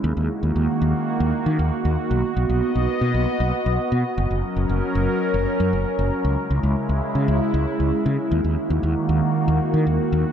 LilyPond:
<<
  \new Staff \with { instrumentName = "Analog synth pad" } { \time 4/4 \key dis \phrygian \tempo 4 = 116 <dis ais fis'>1 | <b dis''>1 | <fis cis' ais'>1 | <cis gis e'>1 |
<dis ais fis'>1 | }
  \new Staff \with { instrumentName = "Fretless electric bass" } { \clef bass \time 4/4 \key dis \phrygian dis,16 dis,16 r16 dis,16 dis,16 r16 dis,16 r8 dis,16 r16 dis16 dis,16 r16 dis,16 r16 | b,,16 r16 b,,16 b,,16 r16 b,,16 r16 b,16 b,,16 r16 b,,16 r16 b,,16 r16 b,16 r16 | fis,,16 fis,,16 r16 fis,,16 fis,,16 r16 fis,,16 r8 fis,,16 r16 fis,16 fis,,16 r16 fis,,16 r16 | cis,16 r16 cis,16 cis,16 r16 cis,16 r16 cis16 cis,16 r16 cis,16 r16 cis,16 r16 cis16 r16 |
dis,16 dis,16 r16 dis,16 dis,16 r16 dis,16 r8 dis,16 r16 dis16 dis,16 r16 dis,16 r16 | }
>>